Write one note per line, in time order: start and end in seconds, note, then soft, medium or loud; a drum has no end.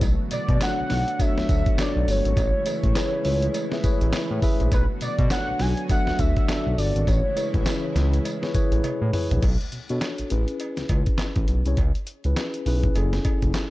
0.00 0.16 B1 loud
0.00 2.35 D3 medium
0.00 2.35 F#3 medium
0.00 9.39 A3 medium
0.00 2.35 B3 medium
0.00 2.35 F#4 medium
0.00 kick loud
0.00 closed hi-hat medium
0.00 tambourine medium
0.00 cowbell medium
0.31 0.39 B2 soft
0.31 0.59 D5 loud
0.31 closed hi-hat medium
0.31 tambourine medium
0.31 cowbell medium
0.48 0.58 B2 loud
0.48 kick medium
0.48 closed hi-hat soft
0.61 1.06 D4 medium
0.61 1.06 F#4 medium
0.61 1.06 A4 medium
0.61 1.06 C#5 medium
0.61 1.22 F#5 loud
0.61 snare loud
0.61 clap loud
0.61 closed hi-hat medium
0.61 tambourine loud
0.61 cowbell medium
0.79 0.84 B1 medium
0.90 1.04 B1 loud
0.90 snare medium
0.90 open hi-hat medium
1.08 closed hi-hat medium
1.19 1.64 D4 medium
1.19 1.65 F#4 medium
1.19 1.65 A4 medium
1.19 1.65 C#5 medium
1.19 1.82 E5 loud
1.19 kick medium
1.19 closed hi-hat medium
1.19 tambourine medium
1.19 cowbell medium
1.38 1.42 D2 medium
1.38 snare medium
1.49 1.63 D2 medium
1.49 kick medium
1.49 closed hi-hat medium
1.49 tambourine medium
1.66 kick loud
1.66 closed hi-hat medium
1.78 2.37 D4 loud
1.78 2.37 F#4 medium
1.78 2.37 A4 medium
1.78 2.38 C#5 loud
1.78 2.12 D5 loud
1.78 snare loud
1.78 clap loud
1.78 closed hi-hat medium
1.78 tambourine medium
1.78 cowbell medium
1.96 2.05 B1 medium
2.07 2.21 G1 medium
2.07 4.44 C#5 medium
2.07 open hi-hat medium
2.07 tambourine medium
2.25 2.34 G#1 medium
2.25 closed hi-hat medium
2.36 2.51 A1 loud
2.36 4.69 C#3 medium
2.36 4.70 E3 medium
2.36 4.70 G#3 medium
2.36 4.70 E4 loud
2.36 kick loud
2.36 closed hi-hat medium
2.36 tambourine medium
2.36 cowbell medium
2.66 2.89 E4 medium
2.66 2.90 G#4 medium
2.66 2.90 B4 medium
2.66 2.90 C#5 medium
2.66 closed hi-hat medium
2.66 tambourine medium
2.66 cowbell medium
2.83 2.93 A1 medium
2.83 kick medium
2.83 closed hi-hat medium
2.95 3.50 E4 loud
2.95 3.50 G#4 medium
2.95 3.50 B4 medium
2.95 3.51 C#5 loud
2.95 snare loud
2.95 clap loud
2.95 closed hi-hat medium
2.95 tambourine loud
2.95 cowbell medium
3.25 3.48 C#2 loud
3.25 open hi-hat medium
3.42 closed hi-hat medium
3.54 closed hi-hat medium
3.54 tambourine medium
3.54 cowbell medium
3.72 3.80 E4 loud
3.72 3.81 G#4 medium
3.72 3.81 B4 medium
3.72 3.81 E5 loud
3.72 snare medium
3.84 3.91 A1 soft
3.84 4.29 E4 loud
3.84 4.29 G#4 medium
3.84 4.29 B4 medium
3.84 4.30 C#5 loud
3.84 kick medium
3.84 closed hi-hat medium
3.84 tambourine medium
4.01 4.11 A1 loud
4.01 closed hi-hat medium
4.13 snare loud
4.13 clap loud
4.13 closed hi-hat medium
4.13 tambourine medium
4.13 cowbell medium
4.31 4.40 A2 loud
4.42 4.72 E4 medium
4.42 4.72 G#4 medium
4.42 4.72 B4 loud
4.42 4.72 E5 loud
4.42 kick medium
4.42 open hi-hat medium
4.42 tambourine medium
4.60 4.70 A#1 loud
4.60 closed hi-hat soft
4.72 4.86 B1 loud
4.72 7.05 D3 medium
4.72 7.05 F#3 medium
4.72 7.05 B3 medium
4.72 7.05 F#4 medium
4.72 4.86 B4 medium
4.72 kick loud
4.72 closed hi-hat medium
4.72 tambourine medium
4.72 cowbell medium
5.01 5.09 B2 soft
5.01 5.29 D5 loud
5.01 closed hi-hat medium
5.01 tambourine medium
5.01 cowbell medium
5.19 5.28 B2 loud
5.19 kick medium
5.19 closed hi-hat medium
5.30 5.76 D4 medium
5.30 5.76 F#4 medium
5.30 5.76 A4 medium
5.30 5.76 C#5 medium
5.30 5.63 F#5 loud
5.30 snare loud
5.30 clap medium
5.30 closed hi-hat medium
5.30 tambourine loud
5.30 cowbell medium
5.48 5.53 B1 medium
5.59 5.74 B1 medium
5.59 5.90 G#5 loud
5.59 snare medium
5.59 open hi-hat medium
5.77 closed hi-hat medium
5.89 6.35 D4 loud
5.89 6.35 F#4 medium
5.89 6.36 A4 medium
5.89 6.36 E5 loud
5.89 6.21 F#5 loud
5.89 kick medium
5.89 closed hi-hat medium
5.89 tambourine medium
5.89 cowbell medium
6.07 6.12 D2 medium
6.07 snare medium
6.19 6.33 D2 medium
6.19 6.80 E5 loud
6.19 kick medium
6.19 closed hi-hat medium
6.19 tambourine medium
6.36 kick loud
6.36 closed hi-hat medium
6.48 7.07 D4 medium
6.48 7.08 F#4 medium
6.48 7.08 A4 medium
6.48 7.08 D5 loud
6.48 snare loud
6.48 clap loud
6.48 closed hi-hat medium
6.48 tambourine medium
6.48 cowbell medium
6.66 6.75 B1 medium
6.78 6.92 G1 medium
6.78 7.09 D5 medium
6.78 open hi-hat medium
6.78 tambourine medium
6.95 7.05 G#1 medium
6.95 closed hi-hat medium
7.07 7.22 A1 loud
7.07 9.40 C#3 medium
7.07 9.40 E3 medium
7.07 9.40 G#3 medium
7.07 9.40 E4 medium
7.07 7.96 C#5 medium
7.07 kick loud
7.07 closed hi-hat medium
7.07 tambourine medium
7.07 cowbell medium
7.36 7.59 E4 medium
7.36 7.60 G#4 medium
7.36 7.60 B4 medium
7.36 7.60 C#5 medium
7.36 closed hi-hat medium
7.36 tambourine medium
7.36 cowbell medium
7.54 7.64 A1 loud
7.54 kick loud
7.54 closed hi-hat medium
7.65 8.20 E4 medium
7.65 8.20 G#4 medium
7.65 8.21 B4 medium
7.65 8.21 C#5 medium
7.65 snare loud
7.65 clap medium
7.65 closed hi-hat medium
7.65 tambourine loud
7.65 cowbell medium
7.95 8.19 C#2 loud
7.95 snare medium
7.95 closed hi-hat medium
8.13 closed hi-hat medium
8.25 closed hi-hat medium
8.25 tambourine medium
8.25 cowbell medium
8.42 8.51 E4 loud
8.42 8.51 G#4 medium
8.42 8.51 B4 medium
8.42 8.51 C#5 loud
8.42 snare medium
8.54 8.62 A1 medium
8.54 8.99 E4 loud
8.54 8.99 G#4 medium
8.54 9.00 B4 medium
8.54 9.00 C#5 loud
8.54 kick medium
8.54 closed hi-hat medium
8.54 tambourine medium
8.72 8.81 A1 loud
8.72 closed hi-hat medium
8.84 closed hi-hat medium
8.84 high tom medium
8.84 cowbell medium
9.01 9.11 A2 loud
9.13 9.43 E4 loud
9.13 9.43 G#4 medium
9.13 9.43 B4 medium
9.13 9.43 C#5 loud
9.13 mid tom loud
9.13 open hi-hat medium
9.31 9.40 A#1 medium
9.31 closed hi-hat medium
9.31 floor tom medium
9.43 9.57 B1 loud
9.43 kick loud
9.43 closed hi-hat medium
9.43 crash medium
9.43 cowbell medium
9.61 closed hi-hat soft
9.72 9.79 B2 soft
9.72 closed hi-hat medium
9.89 9.99 B2 medium
9.89 10.21 D4 medium
9.89 10.21 F#4 medium
9.89 10.22 A4 medium
9.89 10.22 C#5 medium
9.89 closed hi-hat soft
10.01 snare loud
10.01 clap medium
10.01 closed hi-hat medium
10.01 cowbell medium
10.18 10.24 A1 soft
10.18 closed hi-hat medium
10.30 10.45 A1 loud
10.30 11.26 C#4 medium
10.30 11.26 E4 medium
10.30 11.26 G#4 medium
10.30 11.27 B4 medium
10.30 closed hi-hat medium
10.48 closed hi-hat medium
10.60 closed hi-hat medium
10.60 cowbell medium
10.77 10.83 C#2 soft
10.77 snare medium
10.77 closed hi-hat medium
10.89 11.04 C#2 medium
10.89 kick medium
10.89 closed hi-hat medium
10.89 cowbell medium
11.06 kick medium
11.06 closed hi-hat soft
11.18 snare loud
11.18 clap loud
11.18 closed hi-hat medium
11.18 cowbell medium
11.36 11.46 A1 medium
11.36 kick medium
11.36 closed hi-hat soft
11.48 11.63 B1 medium
11.48 closed hi-hat medium
11.65 11.75 C2 medium
11.65 11.78 C#4 medium
11.65 11.78 E4 medium
11.65 11.78 G#4 medium
11.65 11.79 C#5 loud
11.65 closed hi-hat medium
11.77 11.92 C#2 loud
11.77 kick loud
11.77 closed hi-hat medium
11.77 cowbell medium
11.95 closed hi-hat soft
12.07 closed hi-hat medium
12.24 12.34 C#2 medium
12.24 12.56 C#4 medium
12.24 12.56 E4 medium
12.24 12.57 G#4 medium
12.24 12.57 B4 medium
12.24 closed hi-hat soft
12.36 snare loud
12.36 clap medium
12.36 closed hi-hat medium
12.36 cowbell medium
12.54 closed hi-hat medium
12.66 12.89 B1 loud
12.66 12.89 C#4 medium
12.66 12.89 E4 medium
12.66 12.90 G#4 medium
12.66 12.90 B4 loud
12.66 open hi-hat medium
12.83 kick medium
12.83 closed hi-hat medium
12.95 13.19 F#1 loud
12.95 13.70 C#4 medium
12.95 13.70 E4 medium
12.95 13.70 G#4 medium
12.95 13.70 A4 medium
12.95 closed hi-hat medium
12.95 cowbell medium
13.13 snare medium
13.13 closed hi-hat medium
13.25 13.32 F#1 soft
13.25 kick medium
13.25 closed hi-hat medium
13.25 cowbell medium
13.42 13.52 F#1 medium
13.42 kick medium
13.42 closed hi-hat medium
13.54 snare loud
13.54 clap loud
13.54 closed hi-hat medium
13.54 cowbell medium